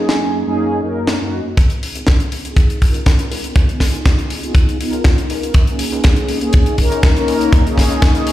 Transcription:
Already playing: F#2 A#3 C#4 D#4 G#4
0.09 snare
0.46 F#2 A#3 C#4 D#4 G#4
0.83 F#2 A#3 C#4 D#4 A#4
1.07 snare
1.21 F#2 A#3 C#4 D#4 F#4
1.57 C#2, kick, closed hi-hat
1.70 B3 D#4 F4 G#4, closed hi-hat
1.83 open hi-hat
1.95 G#1, closed hi-hat
2.07 kick, snare, closed hi-hat
2.20 closed hi-hat
2.32 open hi-hat
2.45 B3 D#4 F4 G#4, closed hi-hat
2.56 kick, closed hi-hat
2.70 closed hi-hat
2.82 kick, open hi-hat
2.94 C#2, closed hi-hat
3.06 kick, snare, closed hi-hat
3.19 closed hi-hat
3.31 C#2, open hi-hat
3.44 closed hi-hat
3.56 C#2, kick, closed hi-hat
3.68 B3 D#4 F4 G#4, closed hi-hat
3.80 kick, snare, open hi-hat
3.94 G#1, closed hi-hat
4.05 kick, snare, closed hi-hat
4.19 closed hi-hat
4.30 open hi-hat
4.43 B3 D#4 F4 G#4, closed hi-hat
4.55 kick, closed hi-hat
4.69 closed hi-hat
4.79 B3 D#4 F4 A#4, open hi-hat
4.93 C#2, closed hi-hat
5.04 kick, snare, closed hi-hat
5.18 closed hi-hat
5.30 C#2, open hi-hat
5.43 closed hi-hat
5.54 F#2, kick, closed hi-hat
5.67 A#3 C#4 D#4 G#4, closed hi-hat
5.79 open hi-hat
5.92 C#2, closed hi-hat
6.04 kick, snare, closed hi-hat
6.16 closed hi-hat
6.29 open hi-hat
6.41 A#3 C#4 D#4 G#4, closed hi-hat
6.53 kick, closed hi-hat
6.66 closed hi-hat
6.78 A#3 C#4 D#4 A#4, kick, open hi-hat
6.91 F#2, closed hi-hat
7.03 kick, snare, closed hi-hat
7.17 closed hi-hat
7.28 F#2, open hi-hat
7.41 closed hi-hat
7.53 F#2, kick, closed hi-hat
7.65 A#3 C#4 D#4 G#4, closed hi-hat
7.78 kick, snare, open hi-hat
7.91 C#2, closed hi-hat
8.02 kick, snare, closed hi-hat
8.15 closed hi-hat
8.27 open hi-hat

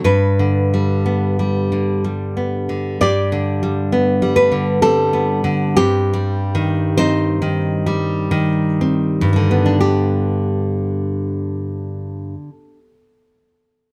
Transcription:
0.04 G2 D4 B4
0.39 D3
0.74 G3
1.06 B3
1.39 G3
1.72 D3
2.04 G3
2.37 B3
2.69 D3
3.01 G2 G4 D5
3.32 D3
3.63 G3
3.92 B3
4.22 G3
4.36 D4 B4
4.52 D3
4.82 G3 C4 A4
5.13 B3
5.44 D3
5.77 G2 C4 G4
6.13 G3
6.55 D#3
6.97 C4 D#4 C5
7.42 D#3
7.86 G3
8.31 D#3
8.81 C4
9.21 G2
9.33 D3 G3
9.51 B3
9.66 D4
9.81 G4

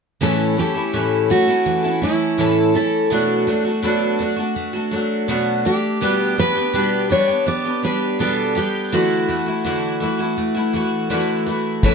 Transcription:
0.21 A2 E3 A3 C#4 E4 A4
0.57 E3 A3 C#4 E4 G4 A4
0.74 A3 C#4 E4 A4
0.93 A2 E3 A3 C#4 E4 A4
1.30 A3 C#4 E4 F#4 A4
1.47 A3 C#4 E4 A4
1.66 E3
1.83 A3 C#4 E4 A4
2.01 A3 C#4 E4 A4
2.38 A2 E3 A3 C#4 E4 A4
2.73 A3 C#4 E4 A4
3.10 B2 F#3 A3 D4 F#4
3.47 F#3 A3 D4 F#4
3.65 A3 D4 F#4
3.82 B2 F#3 A3 D4 F#4
4.19 F#3 A3 D4 F#4
4.37 A3 D4 F#4
4.56 A3
4.73 A3 D4 F#4
4.91 F#3 A3 D4 F#4
5.28 B2 F#3 A3 D4 F#4
5.65 A3 D4 G4
6.01 B2 G3 B3 D4 G4
6.37 G3 B3 D4 G4 B4
6.55 B3 D4 G4
6.73 B2 G3 B3 D4 G4
7.09 G3 B3 D4 G4 C#5
7.27 B3 D4 G4
7.46 B3 D5
7.64 B3 D4 G4
7.83 G3 B3 D4 G4 B4
8.19 B2 G3 B3 D4 G4 A4
8.55 G3 B3 D4 G4
8.92 D3 E3 A3 E4 F#4
9.28 E3 A3 E4 F#4
9.46 A3 E4 F#4
9.64 D3 E3 A3 E4 F#4
10.00 E3 A3 E4 F#4
10.19 A3 E4 F#4
10.38 A3
10.55 A3 E4 F#4
10.73 E3 A3 E4 F#4
11.10 D3 E3 A3 E4 F#4
11.46 E3 A3 E4 F#4
11.83 A2 E3 A3 C#4 E4 A4 B4, kick

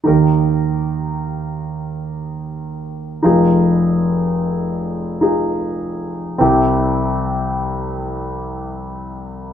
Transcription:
0.04 D#2 D#3 D#4 G4 A#4
3.23 F1 F2 D#4 F4 G#4
5.21 D#4 F4 G#4
6.38 C2 C3 C4 E4 G4

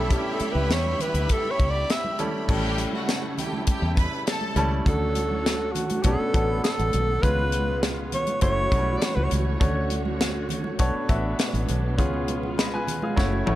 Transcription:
Already playing: B1 D3 G3 A3 C#4 E4 G4 A4 E5 B5
0.10 G3 A3 B3 C#4 E4 G4 A4, kick, closed hi-hat
0.34 A4
0.39 muted fingered electric bass stroke, closed hi-hat, high conga
0.52 C#2 B4, high conga
0.70 E2 C#5, snare, closed hi-hat
0.86 high conga
0.99 B4, closed hi-hat, low conga
1.14 D2, closed hi-hat, high conga
1.29 A4, kick, closed hi-hat
1.45 muted conga
1.51 C#5
1.59 C#2, kick, closed hi-hat
1.70 D5
1.89 E5, snare, closed hi-hat, muted conga
2.05 high conga
2.19 G3 A3 C#4 E4 A4, closed hi-hat, low conga
2.48 A1 C#3 G3 A3 C#4 E4 G4 A4 G5, kick, crash, muted conga, low conga
2.64 muted conga
2.78 closed hi-hat, high conga
2.93 F#4 F#5, high conga
3.09 snare, closed hi-hat
3.24 muted conga
3.37 G4 G5, closed hi-hat, low conga
3.53 high conga
3.67 G4 G5, muted fingered electric bass stroke, kick, closed hi-hat, muted conga
3.82 E2
3.96 B4 B5, kick, closed hi-hat
4.27 A4 A5, snare, closed hi-hat, muted conga
4.41 high conga
4.56 C#2 G3 A3 C#4 E4 A4, closed hi-hat, low conga
4.86 D2 D3 F#3 A3 C#4 D4 F#4 A4 C#5, kick, closed hi-hat, low conga
5.15 closed hi-hat, high conga
5.31 high conga
5.46 snare, closed hi-hat, muted conga
5.72 F#4, closed hi-hat, low conga
5.89 closed hi-hat, high conga
6.03 B1 B2 D3 F#3 B3 C#4 D4 A4, kick, closed hi-hat, muted conga
6.20 muted fingered electric bass stroke, muted conga
6.34 A1 F#3 B3 C#4 D4 A4 F#5, kick, closed hi-hat
6.50 B5
6.64 A4 A5, snare, closed hi-hat, muted conga
6.78 A1 F#5, closed hi-hat, high conga
6.93 B1, closed hi-hat, low conga
7.22 C#2 G#3 B3 C#4 F4 B4, kick, closed hi-hat, muted conga, low conga
7.39 muted conga
7.52 closed hi-hat, high conga
7.68 high conga
7.83 snare, closed hi-hat
7.99 muted conga
8.12 C#5, closed hi-hat, low conga
8.27 closed hi-hat, high conga
8.41 F#1 E3 A3 C#4 E4 F#4 C#5, kick, closed hi-hat, muted conga
8.58 muted conga
8.71 B1 G3 C#4 E4 F#4 C#5, kick, closed hi-hat
8.77 A3
8.97 D5
9.01 C#5, snare, closed hi-hat
9.15 C#2 B4, muted conga, high conga
9.24 C#5
9.31 C#2, closed hi-hat, low conga
9.60 D2 D3 A3 C#4 D4 F#4 C#5, kick, closed hi-hat, low conga
9.90 closed hi-hat, high conga
10.05 high conga
10.19 snare, closed hi-hat, muted conga
10.49 closed hi-hat, low conga
10.64 high conga
10.79 B1 B2 B3 D4 F#4 A4 C#5, kick, closed hi-hat
10.95 muted fingered electric bass stroke
11.08 A1 B3 D4 F#4 A4 E5, kick, closed hi-hat
11.39 snare, closed hi-hat, muted conga
11.53 A1, closed hi-hat, muted conga, high conga
11.68 B1, closed hi-hat, low conga
11.98 C#2 G#3 B3 C#4 F4 G#4 C#5, kick, closed hi-hat, muted conga, low conga
12.14 muted conga
12.28 closed hi-hat, high conga
12.43 high conga
12.58 D#5 B5, snare, closed hi-hat, muted conga
12.74 B4 G#5, high conga
12.87 closed hi-hat, low conga
13.02 G#4 F5, high conga
13.16 F#1 E3 A3 C#4 E4 F#4 C#5, kick, snare, muted conga
13.33 muted conga
13.46 A1 A3 C#4 E4 F#4 C#5, high tom

